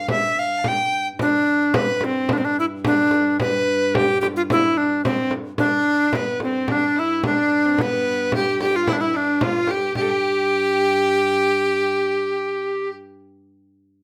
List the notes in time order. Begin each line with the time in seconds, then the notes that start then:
Already playing: G2 F5
0.08 E5, frame drum
0.39 F5
0.57 A5
0.64 G5, frame drum
1.18 G2 D4, frame drum
1.74 B4, frame drum
2.01 C4, frame drum
2.29 frame drum
2.33 D4
2.38 C4
2.45 D4
2.59 E4
2.84 D4, frame drum
3.11 frame drum
3.40 B4, frame drum
3.95 G4, frame drum
4.21 G4, frame drum
4.36 F4
4.50 E4, frame drum
4.77 D4, frame drum
5.05 C4, frame drum
5.31 frame drum
5.58 G2 D4, frame drum
6.13 B3 B4, frame drum
6.40 C4, frame drum
6.68 D4, frame drum
6.96 E4
7.23 D4, frame drum
7.65 C4
7.78 B3 B4, frame drum
8.32 G4, frame drum
8.60 G4, frame drum
8.73 F4
8.86 E4, frame drum
8.93 D4
8.99 E4
9.14 D4, frame drum
9.41 F4, frame drum
9.67 G4, frame drum
9.95 G2 G4, frame drum
10.01 A4
10.08 G4